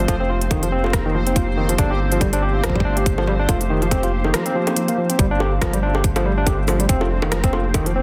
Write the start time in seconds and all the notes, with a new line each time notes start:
Already playing: C4 G4 C5 F5
0.08 F1 F3 A#3, kick, closed hi-hat, high bongo
0.20 C4
0.29 D#4 F4
0.41 closed hi-hat
0.51 D#3, kick, closed hi-hat, high bongo
0.63 F3, closed hi-hat
0.72 C4
0.84 F4, high bongo
0.86 high bongo
0.90 kick, cross-stick, closed hi-hat, high bongo
0.97 high bongo
1.00 high bongo
1.05 D#3
1.15 F3
1.27 C4, closed hi-hat
1.36 F4, kick, closed hi-hat
1.57 D#3
1.69 F3, closed hi-hat
1.78 G1 A3 D4, kick, closed hi-hat, high bongo
1.91 G4
2.11 F3 D4, closed hi-hat
2.21 G3, kick, closed hi-hat, high bongo
2.33 D4, closed hi-hat
2.43 G4
2.64 F3, kick, cross-stick, closed hi-hat
2.70 kick
2.75 G3, kick
2.80 kick
2.85 D4
2.97 G4, closed hi-hat
3.06 kick, closed hi-hat
3.18 F3, high bongo
3.27 G3, high bongo
3.39 D4
3.48 F1 A#3 F4, kick, closed hi-hat, high bongo
3.61 closed hi-hat
3.66 D#3 D#4
3.82 F3, closed hi-hat
3.91 C4, kick, closed hi-hat, high bongo
4.03 F4, closed hi-hat
4.24 D#3, high bongo
4.34 F3, cross-stick, closed hi-hat
4.46 C4, closed hi-hat
4.55 F3
4.67 C4, closed hi-hat, high bongo
4.76 F3, closed hi-hat
4.88 A#3, closed hi-hat
4.98 F3
5.10 C4, closed hi-hat
5.19 G1 G3 A3 C4 C5, kick, closed hi-hat
5.31 D4
5.40 G4, high bongo
5.52 D4
5.62 F3, kick, cross-stick, closed hi-hat, high bongo
5.73 G3, closed hi-hat
5.83 D4
5.95 G4, high bongo
6.04 kick, closed hi-hat
6.16 F3, closed hi-hat, high bongo
6.25 G3
6.37 D4
6.47 G4, kick, closed hi-hat, high bongo
6.68 F3, high bongo, shaker
6.80 G3, closed hi-hat
6.89 F1 A#3 C4, kick, closed hi-hat
6.95 D#4
7.01 F4, high bongo
7.22 D#3, high bongo
7.32 F3, cross-stick, closed hi-hat
7.44 C4, kick, closed hi-hat
7.53 F4, high bongo
7.74 D#3, kick, closed hi-hat, high bongo
7.86 F3, closed hi-hat
7.96 C4